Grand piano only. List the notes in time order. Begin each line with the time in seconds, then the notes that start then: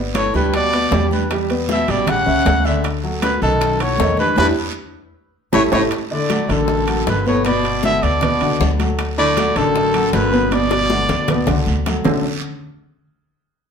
Already playing: B3 B4 D5
0.35 G3 G4 G5
0.73 B3 B4 D5
0.92 G3 G4 G5
1.31 G3 G4 G5
1.50 B3 B4 D5
1.89 G3 G4 G5
2.26 C#4 C#5 E5
2.65 D3 D4 D5
3.04 F#3 F#4 A4
3.42 D#3 D#4 D#5
3.80 F#3 F#4 A4
4.00 D#3 D#4 D#5
4.38 D4 E4 G4
5.53 E4 G4 A4
5.72 E4 G4 A4
6.11 D3 D4 D5
6.30 F#3 F#4 A4
6.49 D3 D4 D5
6.87 F#3 F#4 A4
7.26 B2 B3 B4
7.46 B2 B3 B4
7.85 D3 D4 F#4
8.23 B2 B3 B4
8.41 D3 D4 F#4
8.79 F#3 F#4 A4
9.18 D3 D4 D5
9.37 F#3 F#4 A4
9.57 D3 D4 D5
9.94 F#3 F#4 A4
10.32 B2 B3 B4
10.53 B2 B3 B4
10.90 D3 D4 F#4
11.29 B2 B3 B4
11.48 D3 D4 F#4
11.86 F#3 F#4 A4
12.05 D3 A3 C#4 D4 F#4 A4